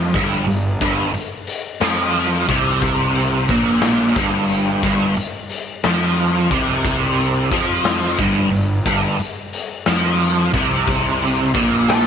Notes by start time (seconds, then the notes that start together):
Already playing: F2 F3
0.14 G1 G2, kick, closed hi-hat
0.47 G1 G2, closed hi-hat
0.81 G1 G2, kick, closed hi-hat
1.14 muted overdriven electric guitar stroke, muted picked electric bass stroke, closed hi-hat
1.47 closed hi-hat
1.81 F2 F3, snare, closed hi-hat
2.15 closed hi-hat
2.49 C2 C3, kick, closed hi-hat
2.82 kick, closed hi-hat
3.15 closed hi-hat
3.49 A#1 A#2, kick, closed hi-hat
3.82 snare, closed hi-hat
4.16 G1 G2, kick, closed hi-hat
4.49 closed hi-hat
4.83 G1 G2, kick, closed hi-hat
5.16 muted overdriven electric guitar stroke, muted picked electric bass stroke, closed hi-hat
5.50 closed hi-hat
5.84 F2 F3, snare, closed hi-hat
6.17 closed hi-hat
6.51 C2 C3, kick, closed hi-hat
6.85 kick, closed hi-hat
7.18 closed hi-hat
7.51 F2 F3, kick, closed hi-hat
7.85 snare, closed hi-hat
8.19 G1 G2, kick, closed hi-hat
8.52 G1 G2, closed hi-hat
8.85 G1 G2, kick, closed hi-hat
9.19 muted overdriven electric guitar stroke, muted picked electric bass stroke, closed hi-hat
9.53 closed hi-hat
9.86 F2 F3, snare, closed hi-hat
10.20 closed hi-hat
10.54 C2 C3, kick, closed hi-hat
10.88 kick, closed hi-hat
11.22 closed hi-hat
11.54 A#1 A#2, kick, closed hi-hat
11.89 A4, snare, closed hi-hat